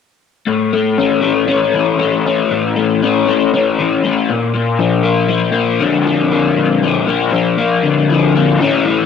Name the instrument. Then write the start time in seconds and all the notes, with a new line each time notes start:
overdriven electric guitar
0.47 A2
0.73 A3
0.98 C#4
1.22 A3
1.48 C#4
1.74 E3
1.99 A3
2.26 C#4
2.51 A2
2.76 A3
3.02 C#4
3.28 A3
3.54 C#4
3.79 E3
4.04 A3
4.30 A#2
4.55 A#2
4.79 F3
5.03 A#3
5.29 F3
5.52 A#3
5.80 D3
6.06 F3
6.32 A#3
6.57 A#2
6.83 F3
7.07 A#3
7.33 F3
7.59 A#3
7.83 D3
8.10 F3
8.35 A#3
8.59 A2 E3 A3 C#4 E4
8.85 A3 C#4 E4